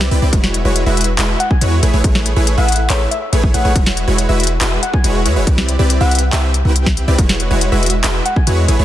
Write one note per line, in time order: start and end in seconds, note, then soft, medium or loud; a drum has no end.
0.01 snare medium
0.11 0.20 C2 loud
0.11 0.20 C4 medium
0.11 0.20 E4 medium
0.11 0.20 G4 medium
0.11 0.20 B4 medium
0.11 0.20 D5 medium
0.11 open hi-hat medium
0.22 0.31 C2 loud
0.22 0.30 C4 medium
0.22 0.30 E4 medium
0.22 0.30 G4 medium
0.22 0.30 B4 medium
0.22 0.30 D5 medium
0.33 0.63 E1 loud
0.33 0.62 G#3 medium
0.33 0.62 E4 medium
0.33 0.62 F#4 medium
0.33 0.62 B4 medium
0.33 kick loud
0.33 closed hi-hat medium
0.44 snare medium
0.54 closed hi-hat medium
0.65 0.84 E1 loud
0.65 0.84 G#3 medium
0.65 0.84 E4 medium
0.65 0.84 F#4 medium
0.65 0.84 B4 medium
0.65 0.84 C#5 loud
0.76 closed hi-hat medium
0.86 1.16 E1 loud
0.86 1.08 G#3 medium
0.86 1.08 E4 medium
0.86 1.08 F#4 medium
0.86 1.08 B4 medium
0.86 1.08 E5 loud
0.97 closed hi-hat soft
1.01 closed hi-hat medium
1.04 closed hi-hat medium
1.18 1.35 E1 medium
1.18 1.37 G#3 medium
1.18 1.37 E4 medium
1.18 1.37 F#4 medium
1.18 1.37 B4 medium
1.18 1.37 E5 medium
1.18 clap loud
1.18 closed hi-hat medium
1.40 1.49 F#5 medium
1.40 closed hi-hat medium
1.51 1.66 G#5 medium
1.51 kick medium
1.61 1.81 E2 loud
1.61 1.80 G#3 loud
1.61 1.80 E4 medium
1.61 1.80 F#4 medium
1.61 1.80 B4 medium
1.61 1.80 C#5 loud
1.61 closed hi-hat medium
1.83 1.91 A1 loud
1.83 1.91 A3 medium
1.83 1.91 E4 medium
1.83 1.91 G#4 medium
1.83 1.91 B4 medium
1.83 1.91 C#5 medium
1.83 closed hi-hat medium
1.93 2.02 A1 medium
1.93 2.02 A3 medium
1.93 2.02 E4 medium
1.93 2.02 G#4 medium
1.93 2.02 B4 medium
1.93 2.02 C#5 medium
2.04 2.34 A1 loud
2.04 2.34 A3 medium
2.04 2.34 E4 medium
2.04 2.34 G#4 medium
2.04 2.34 C#5 medium
2.04 kick loud
2.04 closed hi-hat medium
2.15 snare medium
2.26 closed hi-hat medium
2.36 2.56 A1 loud
2.36 2.55 A3 medium
2.36 2.55 E4 medium
2.36 2.55 G#4 medium
2.36 2.55 B4 medium
2.36 2.55 C#5 loud
2.47 closed hi-hat medium
2.58 2.88 A1 loud
2.58 2.79 A3 medium
2.58 2.79 E4 medium
2.58 2.79 G#4 medium
2.58 2.79 B4 medium
2.58 2.79 E5 loud
2.58 2.88 F#5 loud
2.69 closed hi-hat medium
2.72 closed hi-hat medium
2.76 closed hi-hat medium
2.90 3.07 A1 loud
2.90 3.09 A3 medium
2.90 3.09 E4 medium
2.90 3.09 G#4 medium
2.90 3.09 B4 medium
2.90 3.05 C#5 medium
2.90 3.09 E5 medium
2.90 clap loud
2.90 closed hi-hat medium
3.11 3.18 E5 medium
3.11 closed hi-hat medium
3.22 3.29 E5 medium
3.33 3.52 A1 loud
3.33 3.52 A3 loud
3.33 3.52 E4 medium
3.33 3.52 G#4 medium
3.33 3.52 B4 medium
3.33 3.52 C#5 loud
3.33 closed hi-hat medium
3.43 kick medium
3.54 3.63 A1 loud
3.54 3.62 A3 medium
3.54 3.62 E4 medium
3.54 3.62 G#4 medium
3.54 3.62 B4 medium
3.54 3.62 C#5 medium
3.54 3.80 F#5 medium
3.54 closed hi-hat medium
3.65 3.77 A1 loud
3.65 3.73 A3 medium
3.65 3.73 E4 medium
3.65 3.73 G#4 medium
3.65 3.73 B4 medium
3.65 3.73 C#5 medium
3.75 4.06 E1 loud
3.75 4.05 G#3 medium
3.75 kick loud
3.75 closed hi-hat medium
3.86 snare medium
3.97 closed hi-hat medium
4.08 4.27 E1 loud
4.08 4.27 G#3 medium
4.08 4.27 E4 medium
4.08 4.27 F#4 medium
4.08 4.27 B4 medium
4.08 4.27 C#5 loud
4.18 closed hi-hat medium
4.29 4.59 E1 loud
4.29 4.50 G#3 medium
4.29 4.50 E4 medium
4.29 4.50 F#4 medium
4.29 4.50 B4 medium
4.29 4.50 E5 loud
4.40 closed hi-hat medium
4.43 closed hi-hat medium
4.47 closed hi-hat medium
4.61 4.78 E1 loud
4.61 4.80 G#3 medium
4.61 4.80 E4 medium
4.61 4.80 F#4 medium
4.61 4.80 B4 medium
4.61 4.80 E5 medium
4.61 clap loud
4.61 closed hi-hat medium
4.83 4.91 F#5 medium
4.83 closed hi-hat medium
4.94 5.09 G#5 medium
4.94 kick medium
5.04 5.27 E1 loud
5.04 5.23 G#3 loud
5.04 5.23 E4 medium
5.04 5.23 F#4 medium
5.04 5.23 B4 medium
5.04 5.23 C#5 loud
5.04 closed hi-hat medium
5.25 5.38 E2 loud
5.25 5.34 G#3 medium
5.25 5.34 E4 medium
5.25 5.34 F#4 medium
5.25 5.34 B4 medium
5.25 5.34 C#5 medium
5.25 closed hi-hat medium
5.36 5.45 E1 loud
5.36 5.44 G#3 medium
5.36 5.44 E4 medium
5.36 5.44 F#4 medium
5.36 5.44 B4 medium
5.36 5.44 C#5 medium
5.47 5.77 C2 loud
5.47 5.77 C4 medium
5.47 kick loud
5.47 closed hi-hat medium
5.58 snare medium
5.69 closed hi-hat medium
5.79 5.99 C2 loud
5.79 5.98 C4 medium
5.79 5.98 E4 medium
5.79 5.98 G4 medium
5.79 5.98 B4 medium
5.79 5.98 D5 loud
5.90 closed hi-hat medium
6.01 6.31 C2 loud
6.01 6.22 C4 medium
6.01 6.22 E4 medium
6.01 6.22 G4 medium
6.01 6.22 B4 medium
6.01 6.22 E5 loud
6.01 6.31 F#5 medium
6.11 closed hi-hat soft
6.15 closed hi-hat medium
6.19 closed hi-hat medium
6.33 6.63 C2 loud
6.33 6.52 C4 medium
6.33 6.52 E4 medium
6.33 6.52 G4 medium
6.33 6.52 B4 medium
6.33 6.52 E5 medium
6.33 6.40 E5 medium
6.33 clap loud
6.33 closed hi-hat medium
6.44 6.50 E5 medium
6.54 closed hi-hat medium
6.65 7.06 C2 loud
6.65 7.05 C4 medium
6.65 7.05 E4 medium
6.65 7.05 G4 medium
6.65 7.05 B4 medium
6.65 7.05 G5 medium
6.76 closed hi-hat medium
6.86 kick medium
6.86 snare medium
6.97 closed hi-hat medium
7.08 7.16 C2 loud
7.08 7.16 C4 medium
7.08 7.16 E4 medium
7.08 7.16 G4 medium
7.08 7.16 B4 medium
7.08 7.16 D5 loud
7.18 7.49 E1 loud
7.18 7.48 G#3 medium
7.18 7.48 F#4 medium
7.18 7.48 B4 medium
7.18 kick loud
7.18 closed hi-hat medium
7.29 snare medium
7.40 closed hi-hat medium
7.51 7.70 E1 loud
7.51 7.70 G#3 medium
7.51 7.70 E4 medium
7.51 7.70 F#4 medium
7.51 7.70 B4 medium
7.51 7.70 C#5 loud
7.61 closed hi-hat medium
7.72 8.02 E1 loud
7.72 7.93 G#3 medium
7.72 7.93 E4 medium
7.72 7.93 F#4 medium
7.72 7.93 B4 medium
7.72 7.93 E5 loud
7.83 closed hi-hat soft
7.86 closed hi-hat medium
7.90 closed hi-hat medium
8.04 8.21 E1 loud
8.04 8.23 G#3 medium
8.04 8.23 E4 medium
8.04 8.23 F#4 medium
8.04 8.23 B4 medium
8.04 8.23 E5 medium
8.04 clap loud
8.04 closed hi-hat medium
8.26 8.34 F#5 medium
8.26 closed hi-hat medium
8.36 8.52 G#5 medium
8.36 kick medium
8.47 8.66 E2 loud
8.47 8.66 G#3 loud
8.47 8.66 E4 medium
8.47 8.66 F#4 loud
8.47 8.66 B4 medium
8.47 8.66 C#5 loud
8.47 closed hi-hat medium
8.68 8.77 A1 loud
8.68 8.77 A3 medium
8.68 8.77 E4 medium
8.68 8.77 G#4 medium
8.68 8.77 B4 medium
8.68 8.77 C#5 medium
8.68 closed hi-hat medium
8.79 8.85 A1 loud
8.79 8.85 A3 medium
8.79 8.85 E4 medium
8.79 8.85 G#4 medium
8.79 8.85 B4 medium
8.79 8.85 C#5 medium